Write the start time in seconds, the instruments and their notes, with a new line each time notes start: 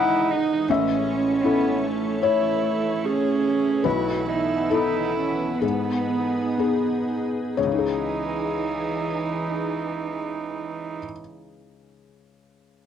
Already playing: felt piano E3 G#4 D#5 F#5, ambient pad E3 G#3 D#5, viola D#4, cello E4
0.31 cello D#4
0.68 felt piano A1 E5, ambient pad A3 C#5, cello C#4, viola C#4
1.44 cello B3, felt piano C#4 E4 A4
1.85 cello A3
2.23 viola E4, felt piano C#5
3.05 cello C#4, viola G#4
3.84 felt piano B1 B4, ambient pad E3 B3 A4, cello E4, viola F#4
4.29 cello D#4, viola E4
4.70 felt piano B3 E4 A4, viola D#4, cello E4
5.19 viola C#4
5.62 felt piano G#2 G#4, cello B3, viola B3, ambient pad D#4 G#4
6.58 felt piano B3 D#4 G#4
7.57 felt piano C#2 C#5, ambient pad E3 D#4 G#4, cello E3, viola D#4
7.65 felt piano C#3
7.72 felt piano D#4
7.78 felt piano G#4